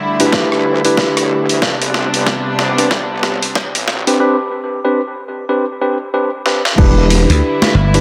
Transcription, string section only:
Already playing: D3 G3 A3 E4
1.62 C3 G3 B3 D4
6.78 D3 G3 E4 B4

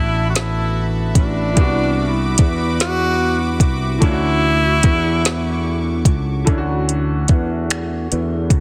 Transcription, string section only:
Already playing: F#4 E5 A5 B5
1.57 F#4 B5 D6
4.02 C#6

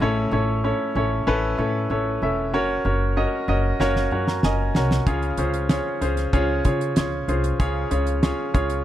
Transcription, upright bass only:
0.00 A1
0.31 A1
0.95 A1
1.27 A1
1.58 A2
1.90 A1
2.22 E1
2.53 F#1
2.85 F#1
3.48 F#1
3.80 F#1
4.11 F#2
4.43 F#1
4.74 C2
5.06 C#2
5.37 C#2
6.01 C#2
6.33 C#2
6.65 C#3
6.96 C#2
7.28 C2
7.60 C#2
7.91 C#2
8.54 C#2

